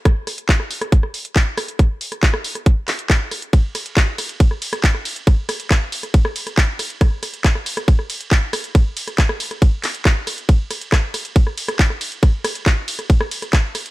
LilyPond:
\new DrumStaff \with { instrumentName = "Drums" } \drummode { \time 4/4 \tempo 4 = 138 <hh bd ss>8 <hho ss>16 hh16 <hc hh bd>16 ss16 hho16 <hh ss>16 <hh bd>16 ss16 hho16 hh16 <hc hh bd ss>8 <hho ss>16 hh16 | <hh bd ss>8 hho16 <hh ss>16 <hc hh bd>16 ss16 hho16 <hh ss>16 <hh bd>8 <hc hho ss>16 hh16 <hc hh bd ss>8 <hho ss>16 hh16 | <hh bd cymr>8 <hho cymr ss>16 hh16 <hc hh bd cymr ss>8 <hho cymr ss>16 hh16 <hh bd cymr>16 ss16 <hho cymr>16 <hh ss>16 <hc hh bd cymr>16 ss16 <hho cymr>16 hh16 | <hh bd cymr ss>8 <hho cymr ss>16 hh16 <hc hh bd cymr ss>8 <hho cymr>16 <hh ss>16 <hh bd cymr>16 ss16 <hho cymr>16 <hh ss>16 <hc hh bd cymr>8 <hho cymr ss>16 hh16 |
<hh bd cymr ss>8 <hho cymr ss>16 hh16 <hc hh bd cymr>16 ss16 <hho cymr>16 <hh ss>16 <hh bd cymr>16 ss16 <hho cymr>16 hh16 <hc hh bd cymr ss>8 <hho cymr ss>16 hh16 | <hh bd cymr ss>8 <hho cymr>16 <hh ss>16 <hc hh bd cymr>16 ss16 <hho cymr>16 <hh ss>16 <hh bd cymr>8 <hc hho cymr ss>16 hh16 <hc hh bd cymr ss>8 <hho cymr ss>16 hh16 | <hh bd cymr>8 <hho cymr ss>16 hh16 <hc hh bd cymr ss>8 <hho cymr ss>16 hh16 <hh bd cymr>16 ss16 <hho cymr>16 <hh ss>16 <hc hh bd cymr>16 ss16 <hho cymr>16 hh16 | <hh bd cymr ss>8 <hho cymr ss>16 hh16 <hc hh bd cymr ss>8 <hho cymr>16 <hh ss>16 <hh bd cymr>16 ss16 <hho cymr>16 <hh ss>16 <hc hh bd cymr>8 <hho cymr ss>16 hh16 | }